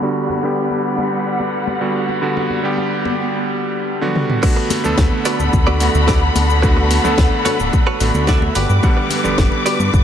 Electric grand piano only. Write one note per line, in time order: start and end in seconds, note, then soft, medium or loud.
0.02 0.41 D3 medium
0.02 0.41 G3 medium
0.02 0.41 B3 medium
0.02 0.41 F#4 medium
0.43 1.78 D3 medium
0.43 1.78 G3 medium
0.43 1.78 B3 medium
0.43 1.79 G4 medium
1.81 2.19 D3 medium
1.81 2.19 G3 medium
1.81 2.19 B3 medium
1.81 2.19 F#4 medium
2.22 2.60 D3 medium
2.22 2.60 G3 medium
2.22 2.61 B3 medium
2.22 2.61 F#4 medium
2.63 3.98 D3 medium
2.63 3.98 G3 medium
2.63 3.98 B3 medium
2.63 3.99 G4 medium
4.01 4.39 D3 medium
4.01 4.40 G3 medium
4.01 4.40 B3 medium
4.01 4.40 F#4 medium
4.43 4.81 D3 medium
4.43 4.81 A3 medium
4.43 4.81 B3 medium
4.43 4.81 F#4 medium
4.84 5.77 D3 medium
4.84 5.78 A3 medium
4.84 5.78 B3 medium
4.84 5.78 A4 medium
5.80 6.60 D3 medium
5.80 6.60 A3 medium
5.80 6.60 B3 medium
5.80 6.60 F#4 medium
6.63 7.01 D3 medium
6.63 7.01 A3 medium
6.63 7.02 B3 medium
6.63 7.02 F#4 medium
7.04 7.98 D3 medium
7.04 7.98 A3 medium
7.04 7.98 B3 medium
7.04 7.99 A4 loud
8.00 8.54 D3 medium
8.00 8.54 A3 medium
8.00 8.54 B3 medium
8.00 8.54 F#4 medium
8.83 9.21 D3 medium
8.83 9.21 G3 medium
8.83 9.22 B3 medium
8.83 9.22 F#5 medium
9.24 10.04 D3 medium
9.24 10.04 G3 medium
9.24 10.04 B3 medium